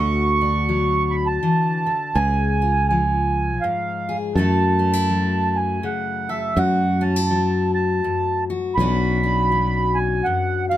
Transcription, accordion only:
0.00 1.16 C#6 loud
1.10 1.27 B5 medium
1.27 2.18 A5 medium
2.15 2.87 G#5 medium
2.88 3.65 G#5 medium
3.61 4.17 F5 medium
4.36 5.57 A5 loud
5.56 5.85 G#5 medium
5.85 6.30 F#5 medium
6.29 6.58 E5 medium
6.58 7.03 F#5 medium
7.01 7.71 A5 medium
7.74 8.44 A5 medium
8.75 9.98 B5 loud
9.95 10.26 G#5 medium
10.24 10.65 F#5 medium
10.70 10.77 F5 medium

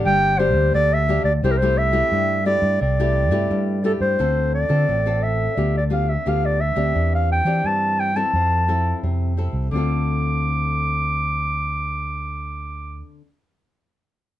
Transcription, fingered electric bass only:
0.04 0.54 G1 medium
0.54 0.70 D2 medium
0.74 1.18 D2 loud
1.24 1.39 D2 medium
1.43 2.02 C2 medium
2.12 2.56 G2 medium
2.62 2.77 G2 medium
2.81 3.31 C2 medium
3.31 3.46 G2 medium
3.50 3.94 G2 loud
4.01 4.16 G2 medium
4.20 4.64 D2 medium
4.70 4.85 D3 medium
4.89 5.47 A1 medium
5.57 6.16 D2 medium
6.27 6.71 D2 medium
6.77 6.92 D2 medium
6.95 7.40 E2 medium
7.45 7.61 E3 medium
7.64 8.23 G2 medium
8.33 8.92 F2 medium
9.03 9.47 F2 medium
9.53 9.68 C2 medium
9.72 13.01 D2 medium

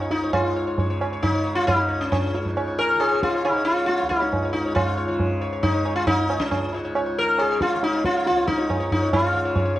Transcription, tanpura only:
0.00 1.86 C#2 medium
0.00 0.23 G#2 medium
0.00 0.77 C#3 medium
0.23 2.39 G#2 medium
0.77 1.31 C#3 medium
1.31 2.95 C#3 medium
1.87 4.02 C#2 medium
2.40 4.55 G#2 medium
2.95 3.49 C#3 medium
3.49 5.08 C#3 medium
4.02 6.15 C#2 medium
4.55 6.68 G#2 medium
5.08 5.61 C#3 medium
5.61 7.23 C#3 medium
6.15 8.29 C#2 medium
6.68 8.81 G#2 medium
7.23 7.75 C#3 medium
7.75 9.34 C#3 medium
8.30 9.79 C#2 medium
8.82 9.79 G#2 medium
9.34 9.79 C#3 medium

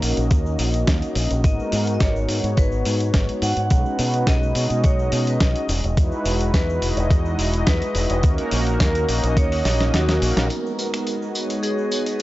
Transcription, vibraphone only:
1.44 1.93 D#5 medium
1.94 2.01 D#5 medium
2.01 2.59 C#5 medium
2.57 3.45 B4 medium
3.43 4.30 F#5 loud
4.27 4.86 D#5 medium
4.85 5.29 C#5 medium
5.28 5.41 B4 medium
5.41 5.81 D#5 medium
6.54 7.07 B4 loud
7.67 8.19 B4 loud
8.81 9.39 A#4 medium
9.37 9.96 C#5 loud
9.94 10.34 F#4 medium
11.63 12.22 G#4 loud

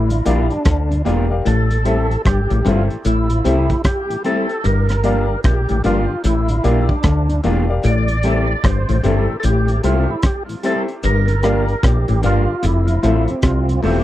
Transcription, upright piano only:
0.11 0.17 D5 soft
0.11 0.17 F5 soft
0.25 0.52 G4 medium
0.25 0.52 A#4 medium
0.25 0.52 D5 medium
0.25 0.52 F5 medium
1.05 1.29 G4 medium
1.05 1.29 A#4 medium
1.05 1.30 D5 medium
1.05 1.30 F5 medium
1.30 1.47 G4 medium
1.30 1.48 A#4 medium
1.30 1.48 D5 medium
1.30 1.48 F5 medium
1.85 2.11 G4 medium
1.85 2.12 A4 medium
1.85 2.12 C5 medium
1.85 2.12 E5 loud
2.65 2.91 G4 medium
2.65 2.92 A4 medium
2.65 2.92 C5 medium
2.65 2.92 E5 medium
3.30 3.36 C5 soft
3.30 3.36 E5 soft
3.44 3.71 G4 medium
3.44 3.71 A4 medium
3.44 3.72 C5 medium
3.44 3.72 E5 loud
4.24 4.51 G4 medium
4.24 4.51 A4 medium
4.24 4.51 C5 medium
4.24 4.52 E5 medium
5.04 5.31 G4 medium
5.04 5.31 A#4 medium
5.04 5.31 D5 medium
5.04 5.31 F5 loud
5.84 6.11 G4 medium
5.84 6.11 A#4 medium
5.84 6.11 D5 medium
5.84 6.11 F5 loud
6.49 6.55 D5 soft
6.49 6.55 F5 soft
6.63 6.90 G4 medium
6.63 6.90 A#4 medium
6.63 6.91 D5 medium
6.63 6.91 F5 loud
7.43 7.67 G4 medium
7.43 7.68 A#4 medium
7.43 7.68 D5 medium
7.43 7.68 F5 loud
7.69 7.86 G4 medium
7.69 7.86 A#4 medium
7.69 7.87 D5 medium
7.69 7.87 F5 medium
8.24 8.50 G4 medium
8.24 8.51 A4 medium
8.24 8.51 C5 medium
8.24 8.51 E5 medium
9.04 9.30 G4 medium
9.04 9.30 A4 medium
9.04 9.31 C5 medium
9.04 9.31 E5 medium
9.69 9.75 C5 soft
9.69 9.75 E5 soft
9.83 10.10 G4 medium
9.83 10.10 A4 medium
9.83 10.10 C5 medium
9.83 10.11 E5 loud
10.63 10.90 G4 medium
10.63 10.90 A4 medium
10.63 10.90 C5 medium
10.63 10.91 E5 medium
11.43 11.70 G4 medium
11.43 11.70 A#4 medium
11.43 11.70 D5 medium
11.43 11.70 F5 loud
12.23 12.50 G4 medium
12.23 12.50 A#4 medium
12.23 12.50 D5 medium
12.23 12.50 F5 medium
12.88 12.94 C5 soft
12.88 12.94 E5 soft
13.03 13.29 F4 medium
13.03 13.30 A4 medium
13.03 13.30 C5 medium
13.03 13.30 E5 medium
13.83 14.04 F4 medium
13.83 14.04 A4 medium
13.83 14.04 C5 medium
13.83 14.04 E5 medium

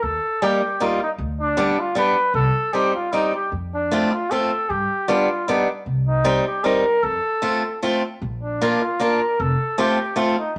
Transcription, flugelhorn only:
0.03 0.45 A4 medium
0.43 0.84 G4 medium
0.82 1.02 F4 medium
1.03 1.11 D#4 medium
1.41 1.81 D4 medium
1.79 1.97 F4 medium
1.97 2.33 B4 loud
2.35 2.75 A4 loud
2.73 2.94 G4 medium
2.95 3.14 F4 medium
3.13 3.34 D#4 medium
3.34 3.51 G4 medium
3.74 4.14 D4 medium
4.12 4.32 F4 medium
4.31 4.71 A4 medium
4.70 5.10 G4 medium
5.09 5.50 F4 medium
5.48 5.69 D#4 medium
6.08 6.44 D#4 medium
6.47 6.66 G4 medium
6.64 7.05 A#4 medium
7.03 7.82 A4 loud
8.43 8.83 D4 medium
8.82 9.03 F4 medium
9.02 9.42 A#4 medium
9.40 9.81 A4 medium
9.79 10.19 G4 medium
10.18 10.38 F4 medium
10.38 10.55 D#4 medium

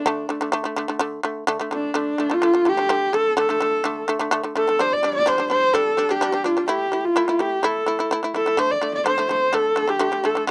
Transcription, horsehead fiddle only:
0.00 0.55 D4 medium
1.74 1.95 D4 medium
1.98 2.35 D4 medium
2.34 2.70 F4 loud
2.68 3.15 G4 medium
3.14 3.38 A4 medium
3.39 4.05 A4 medium
4.57 4.82 A4 medium
4.81 4.94 C5 loud
4.93 5.14 D5 medium
5.15 5.29 D5 loud
5.28 5.50 C5 medium
5.51 5.75 C5 loud
5.73 6.12 A4 medium
6.10 6.47 G4 medium
6.46 6.68 F4 medium
6.69 7.06 G4 medium
7.05 7.41 F4 medium
7.40 7.66 G4 medium
7.64 8.11 A4 medium
8.35 8.60 A4 medium
8.58 8.72 C5 medium
8.71 8.94 D5 medium
8.94 9.05 D5 medium
9.07 9.28 C5 medium
9.31 9.55 C5 medium
9.54 9.91 A4 medium
9.90 10.27 G4 loud
10.25 10.48 A4 medium

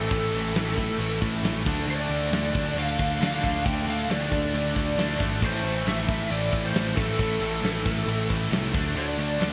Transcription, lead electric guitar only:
0.00 1.19 A4 medium
1.91 2.74 D5 medium
2.79 3.19 F5 medium
3.22 3.63 F5 medium
3.65 3.88 G5 loud
3.89 4.10 F5 loud
4.11 4.54 D5 medium
4.56 5.17 D5 medium
5.45 5.85 C5 loud
5.89 6.31 E5 loud
6.31 6.65 D5 loud
6.65 6.96 C5 loud
6.96 8.25 A4 medium
8.98 9.53 D5 loud

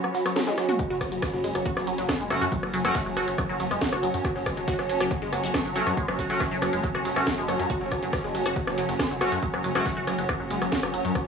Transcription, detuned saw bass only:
0.90 0.97 F#1 medium
1.01 1.08 F#1 loud
1.12 1.19 F#1 loud
1.34 1.40 F#1 medium
1.44 1.51 F#1 loud
1.55 1.62 F#1 medium
1.77 1.83 F#1 medium
1.87 1.94 F#1 loud
1.98 2.05 F#1 medium
2.20 2.27 F#1 medium
2.30 2.37 F#1 loud
2.41 2.48 F#2 loud
2.63 2.70 F#1 medium
2.74 2.81 F#1 loud
2.85 2.91 F#1 medium
3.06 3.13 F#1 medium
3.17 3.24 F#1 loud
3.28 3.34 F#1 medium
3.49 3.56 F#1 medium
3.60 3.67 F#1 loud
3.71 3.78 F#1 medium
3.93 3.99 F#1 medium
4.03 4.10 F#1 loud
4.14 4.21 F#2 loud
4.36 4.42 F#1 medium
4.46 4.53 F#1 loud
4.57 4.64 F#1 medium
4.79 4.85 F#1 medium
4.89 4.96 F#1 loud
5.00 5.07 F#1 loud
5.22 5.29 F#1 medium
5.33 5.40 F#1 loud
5.44 5.50 F#1 medium
5.65 5.72 F#1 medium
5.76 5.83 F#1 loud
5.87 5.93 F#2 medium
6.08 6.15 F#1 medium
6.19 6.26 F#1 loud
6.30 6.37 F#1 medium
6.51 6.58 F#1 medium
6.62 6.69 F#1 loud
6.73 6.80 F#1 medium
6.95 7.01 F#1 medium
7.05 7.12 F#1 loud
7.16 7.23 F#1 medium
7.38 7.44 F#1 medium
7.48 7.55 F#1 loud
7.59 7.66 F#2 loud
7.81 7.88 F#1 medium
7.91 7.99 F#1 loud
8.03 8.09 F#1 medium
8.24 8.31 F#1 medium
8.35 8.42 F#1 loud
8.46 8.52 F#1 medium
8.67 8.74 F#1 medium
8.78 8.85 F#1 loud
8.89 8.96 F#1 medium
9.11 9.17 F#1 medium
9.21 9.28 F#1 loud
9.32 9.39 F#2 loud
9.54 9.60 F#1 medium
9.64 9.71 F#1 loud
9.75 9.82 F#1 loud
9.97 10.03 F#1 medium
10.07 10.14 F#1 loud
10.18 10.25 F#1 medium
10.40 10.47 F#1 medium
10.51 10.58 F#1 loud
10.62 10.68 F#1 medium
10.83 10.90 F#1 medium
10.94 11.01 F#1 loud
11.05 11.11 F#2 loud

